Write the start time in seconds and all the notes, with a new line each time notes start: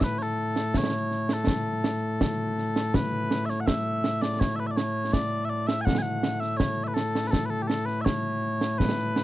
Already playing: A2 A3
0.01 B4 E5, concert bass drum, snare
0.18 C#5, snare
0.22 A4
0.56 snare
0.74 C#5, concert bass drum, snare
1.11 snare
1.29 snare
1.33 A4
1.47 concert bass drum, snare
1.84 snare
2.21 concert bass drum, snare
2.58 snare
2.76 snare
2.94 B4, concert bass drum, snare
3.31 snare
3.46 E5, snare
3.50 C#5
3.60 F#5
3.66 E5, concert bass drum, snare
4.04 snare
4.22 D5, snare
4.40 C#5, concert bass drum, snare
4.56 B4 E5
4.67 E5
4.71 D5
4.76 C#5, snare
5.13 D5, concert bass drum, snare
5.45 E5
5.50 D5
5.67 E5, snare
5.81 G#5
5.85 F#5, concert bass drum, snare
5.98 F#5 G#5
6.23 snare
6.40 E5, snare
6.57 C#5, concert bass drum, snare
6.84 B4 E5
6.94 A4, snare
7.15 snare
7.27 A4 B4
7.33 concert bass drum, snare
7.45 B4
7.50 A4
7.62 G4
7.67 A4, snare
7.85 B4, snare
8.01 C#5 E5
8.06 concert bass drum, snare
8.61 snare
8.78 B4, concert bass drum, snare
9.16 snare